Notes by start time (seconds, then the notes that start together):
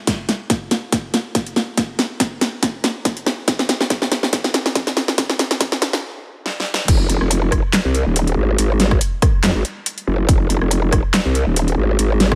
0.07 kick, snare, closed hi-hat
0.29 snare, closed hi-hat
0.50 kick, snare, closed hi-hat
0.71 snare, closed hi-hat
0.92 kick, snare, closed hi-hat
1.14 snare, closed hi-hat
1.35 kick, snare, closed hi-hat
1.47 closed hi-hat
1.56 snare
1.77 kick, snare, closed hi-hat
1.99 snare, closed hi-hat
2.20 kick, snare, closed hi-hat
2.41 snare, closed hi-hat
2.63 kick, snare, closed hi-hat
2.84 snare, closed hi-hat
3.05 kick, snare, closed hi-hat
3.17 closed hi-hat
3.26 snare
3.48 kick, snare, closed hi-hat
3.59 snare
3.69 snare, closed hi-hat
3.81 snare
3.90 kick, snare, closed hi-hat
4.02 snare
4.12 snare, closed hi-hat
4.23 snare
4.33 kick, snare, closed hi-hat
4.44 snare
4.54 snare, closed hi-hat
4.66 snare
4.75 kick, snare, closed hi-hat
4.87 snare, closed hi-hat
4.97 snare
5.08 snare
5.18 kick, snare, closed hi-hat
5.30 snare
5.39 snare, closed hi-hat
5.51 snare, closed hi-hat
5.61 kick, snare, closed hi-hat
5.72 snare
5.82 snare, closed hi-hat
5.93 snare
6.46 snare
6.60 snare
6.74 snare
6.88 F1, kick, closed hi-hat, crash
7.10 F1, closed hi-hat
7.21 F1, cross-stick
7.31 closed hi-hat
7.52 kick, cross-stick, closed hi-hat
7.73 snare, clap, closed hi-hat
7.85 C2
7.95 closed hi-hat
8.06 D#1
8.16 closed hi-hat
8.27 closed hi-hat
8.37 G#1
8.58 G#1, closed hi-hat
8.80 snare, closed hi-hat
8.91 kick, cross-stick
9.01 closed hi-hat
9.22 kick, cross-stick, closed hi-hat
9.44 F2, snare, clap, closed hi-hat
9.55 G#1
9.65 closed hi-hat
9.86 closed hi-hat
9.98 closed hi-hat
10.07 F#1
10.29 F1, kick, closed hi-hat
10.50 F1, closed hi-hat
10.61 F1, cross-stick
10.71 closed hi-hat
10.92 kick, cross-stick, closed hi-hat
11.14 snare, clap, closed hi-hat
11.25 C2
11.35 closed hi-hat
11.47 D#1
11.56 closed hi-hat
11.68 closed hi-hat
11.78 G#1
11.99 G#1, closed hi-hat
12.20 snare, closed hi-hat
12.32 kick, cross-stick